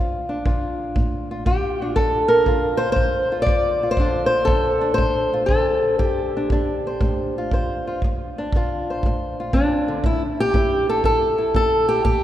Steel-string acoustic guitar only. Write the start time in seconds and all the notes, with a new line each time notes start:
Already playing: D2 D4 F4
0.29 D4
0.46 D3 F4
0.96 A2
1.31 F4
1.46 D3 G4
1.82 D4
1.96 D2 A4
2.28 A#4
2.47 D3 F4
2.77 C5
2.92 C5
2.98 D2
3.32 F4
3.42 D5
3.48 D3
3.83 F4
3.91 C5
3.98 D2 D3 D4 F4
4.26 C5
4.45 D3 A4
4.81 D4
4.94 C5
4.99 A2
5.33 F4
5.46 A4
5.51 D3
5.99 D2 G4
6.37 D4
6.52 D3 D4
6.87 C5
7.01 A2
7.38 F4
7.53 D3 C5
7.87 F4
8.04 D2
8.38 D4
8.56 D3 F4
8.90 C5
9.06 A2
9.40 F4
9.53 D3 D4
9.88 D3
10.04 A2 E4
10.40 G4
10.55 C#4 E4
10.89 A4
11.05 A2 A4
11.38 E4
11.55 C#4 A4
11.89 G4
12.04 A2 G4